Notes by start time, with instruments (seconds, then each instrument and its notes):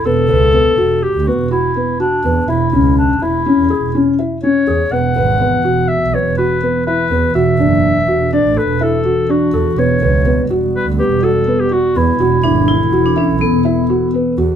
0.05 double bass E1, felt piano B3, clarinet A4
0.29 double bass C#2, felt piano B4
0.54 felt piano B3
0.78 double bass E1, felt piano F#4
1.03 clarinet G4
1.15 double bass D2
1.27 felt piano B3, clarinet F#4
1.39 double bass E1
1.51 clarinet E4, felt piano F#4
1.76 felt piano B3
2.00 clarinet D4, felt piano F#4
2.24 double bass E2, felt piano B3
2.48 double bass E1, felt piano E4, clarinet E4
2.73 double bass C#2, felt piano C#4
2.98 clarinet D4
3.22 double bass E1, felt piano E4, clarinet E4
3.46 felt piano C#4
3.58 double bass E2
3.70 felt piano G#4
3.82 double bass E1
3.95 felt piano C#4
4.19 felt piano E4
4.43 felt piano C#4, clarinet C#5
4.67 double bass E2, felt piano G#4
4.92 double bass E1, ambient pad E3 B3 F#4, felt piano B3, clarinet F#5
5.16 double bass G#1, felt piano B4
5.40 felt piano B3
5.65 double bass E1, felt piano F#4
5.88 clarinet E5
6.02 double bass B1
6.13 felt piano B3, clarinet C#5
6.26 double bass E1
6.38 felt piano F#4, clarinet B4
6.63 felt piano B3
6.86 felt piano E4, clarinet B4
7.11 double bass E2, felt piano B3
7.35 double bass E1, ambient pad D4 F#4, felt piano F#4, clarinet E5
7.59 double bass F#1, felt piano D4
8.08 double bass E1, felt piano F#4
8.33 felt piano D4, clarinet D5
8.45 double bass A1
8.56 felt piano A4, clarinet B4
8.68 double bass E1
8.81 felt piano E4, clarinet A4
9.05 felt piano F#4
9.29 felt piano D4, clarinet F#4
9.53 double bass E2, felt piano A4
9.77 double bass E1, ambient pad G3 B3, felt piano B3, clarinet C#5
10.01 double bass C#2, felt piano B4
10.26 felt piano B3
10.50 double bass E1, felt piano F#4
10.75 clarinet B4
10.86 double bass D2
10.98 felt piano B3, clarinet G4
11.11 double bass E1
11.23 felt piano F#4, clarinet A4
11.47 felt piano B3
11.60 clarinet G4
11.72 felt piano F#4, clarinet F#4
11.96 double bass E2, felt piano B3, clarinet E4
12.20 double bass E1, ambient pad E3 A4, felt piano F#4
12.44 double bass G#1, vibraphone D4, felt piano E4
12.68 vibraphone E4
12.92 double bass E1, felt piano F#4
13.06 vibraphone D4
13.16 vibraphone C#4, felt piano E4
13.29 double bass B1
13.40 vibraphone B3, felt piano A4
13.53 double bass E1
13.65 felt piano E4
13.90 felt piano F#4
14.14 felt piano B3
14.38 double bass E2, felt piano F#4